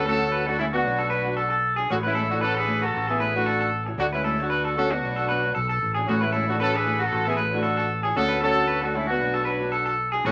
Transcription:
Already playing: D2
0.06 A3 C#4 F#4 A4
0.21 F#4
0.32 B4
0.47 A3 D4 F#4 A4
0.59 G#3 A3 C#4 E4 F#4
0.73 B3 D4 F#4
0.85 B1 B3 D4 F#4 C#5
0.99 A4
1.10 B3 D4 F#4 B4 C#5
1.25 D4 F#4 C#5
1.37 A4
1.50 A4
1.76 D4 F#4 G#4 C#5
1.90 A1 A3 C#4 E4 F#4 C#5
2.03 G#3 C#4 E4 B4
2.15 A3 E4 A4 C#5
2.30 A3 D4 E4 F#4 C#5
2.41 C#4 F#4 A4 B4
2.55 D4 G#4 A4 B4
2.66 A3 E4 F#4 C#5
2.82 C#4 F#4 A4
2.94 A1
3.07 B3 E4 G#4 A4
3.19 A3 E4 F#4 B4 C#5
3.34 A3 D4 E4 F#4 C#5
3.46 A4
3.61 A4
3.86 E4 F#4 C#5, muted clean electric guitar stroke
3.98 D2 A3 D4 F#4 C#5
4.13 G#3 C#4 E4 B4
4.24 A3 D4 F#4 A4 C#5
4.40 A3 D4 F#4 C#5
4.50 B4
4.65 A4
4.77 A3 C#4 D4 F#4 A4 C#5
4.91 B3 D4 F#4
5.03 B1 B3 D4 F#4 C#5
5.16 A4
5.29 B3 D4 F#4 B4 C#5
5.44 F#4 C#5, muted steel-string acoustic guitar stroke
5.55 B1 A4
5.69 A4
5.83 A1
5.94 F#4 G#4 C#5
5.99 D4
6.07 A1 A3 C#4 E4 F#4 C#5
6.21 G#3 C#4 E4 B4
6.33 A3 E4 F#4 A4 C#5
6.48 A3 D4 E4 F#4 C#5
6.59 C#4 F#4 A4 B4
6.73 D4 G#4 A4 B4
6.85 A3 E4 F#4 C#5
6.99 C#4 F#4
7.03 A4
7.12 A1
7.25 B3 E4 A4
7.30 G#4
7.37 A3 E4 F#4 B4 C#5
7.51 A3 D4 E4 F#4 C#5
7.63 A4
7.77 A4
8.03 E4 F#4 G#4 C#5
8.16 D2 A3 C#4 D4 F#4 A4 C#5
8.29 B4
8.41 A3 C#4 D4 F#4 A4 C#5
8.55 F#4 C#5
8.67 B4
8.82 A3 D4 F#4 A4
8.93 G#3 A3 C#4 D4 E4 F#4 C#5
9.07 B3 D4 F#4
9.20 B1 B3 D4 F#4 C#5
9.34 A4
9.45 B3 D4 F#4 B4
9.49 C#5
9.60 D4 F#4 C#5
9.72 A4
9.86 A4
10.12 F#4 G#4, muted steel-string acoustic guitar stroke
10.16 D4
10.25 A1 A3 C#4 E4 F#4 C#5

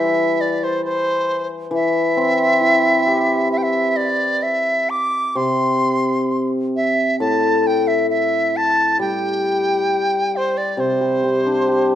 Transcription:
Already playing: E3 G3 E5
0.41 D5
0.64 C5
0.85 C5
1.71 E3
1.75 E5
2.17 C4
2.61 E4
3.07 G4
3.52 E5
3.58 G5
3.64 E5
3.97 D5
4.43 E5
4.90 D6
5.35 C3 C6
6.76 E5
7.20 A2 A5
7.67 G5
7.87 E5
8.10 E5
8.57 A5
8.99 G3 G5
10.36 C5
10.57 D5
10.77 C3 C5
11.01 G3
11.24 C4
11.46 D4
11.68 G4

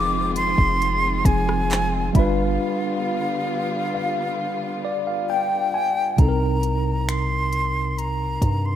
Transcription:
Already playing: F1 D#3 F3 G#3 C4 D#4 F4 G#4 C6 D6
0.36 C6, closed hi-hat
0.58 F1, kick
0.82 closed hi-hat
1.25 F1 F3 C4 D#4 G#4 G#5, kick, closed hi-hat
1.49 cross-stick
1.71 clap, closed hi-hat
2.13 G1 D3 G3 B3 D4 F4 F5 B5, kick, closed hi-hat
2.19 B4
3.94 F5
4.85 D5
5.07 F5
5.29 G5
5.74 G#5
6.17 C2 C3 C4 D#4 A#5, kick, closed hi-hat
6.22 A4
6.29 A#4
6.63 closed hi-hat
7.09 C6, finger snap, closed hi-hat
7.53 closed hi-hat
7.98 A#5, closed hi-hat
8.42 G2, kick, closed hi-hat
8.65 C6

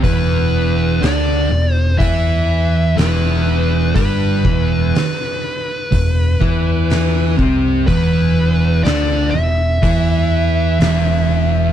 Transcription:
0.03 E1 E2 E3 B4, kick, open hi-hat
1.01 D2 D3 D4 D5, snare, open hi-hat
1.50 E1 E2
1.73 C5
1.97 E2 E3 E4 E5, kick, open hi-hat
2.96 E1 E2 E3 B4, snare, open hi-hat
3.95 G1 G2 G3 B4, kick, open hi-hat
4.44 E1 E2 E3, kick
4.95 snare, open hi-hat
5.92 E1 E2, kick, open hi-hat
6.40 E2 E3 E4, kick
6.90 snare, open hi-hat
7.38 C2 C3 C4, kick
7.87 E1 E2 E3 B4, kick, open hi-hat
8.83 D2 D3 D4 D5, snare, open hi-hat
9.31 E1 E2 E5
9.82 E2 E3 E4, kick, open hi-hat
10.79 E1 E2 E3, snare, open hi-hat

